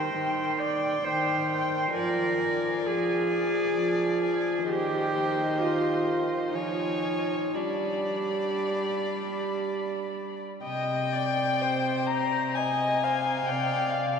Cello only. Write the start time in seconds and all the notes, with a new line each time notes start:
Already playing: C5
0.59 D5
1.04 C5
1.94 A#4
2.78 A#4
2.86 G#4
4.69 G4
5.60 F4
6.55 D#4
7.55 D4
10.64 C3
13.48 C3